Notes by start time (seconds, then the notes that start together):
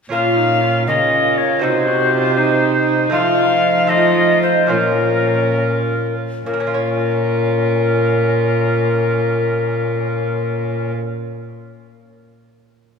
0.09 A#2 C#4 F4 A#4 F5
0.13 A#2
0.36 D#4
0.61 F4
0.87 C#3 A#3 F4 D#5
1.38 C#5
1.59 C3 C4 D#4 F#4 C5
1.63 C3
1.87 F#4
2.11 F4
2.38 D#4
3.10 F3 A3 D#4 F4 F5
3.14 F4
3.87 A3 D#4 F4 D#5
4.42 C5
4.67 A#2 A#3 C#4 F4 A#4
4.71 F4
6.46 A#2 C#4 F4 A#4
6.54 A#3
6.60 C#4
6.67 F4
6.74 C#5